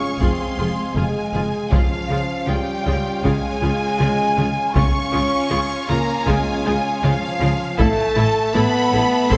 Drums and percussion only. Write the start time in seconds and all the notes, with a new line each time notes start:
0.21 taiko
0.97 taiko mid
1.35 taiko mid
1.72 taiko
3.25 taiko
4.00 taiko mid
4.38 taiko mid
4.76 taiko
6.27 taiko
7.04 taiko mid
7.42 taiko mid
7.79 taiko
9.31 taiko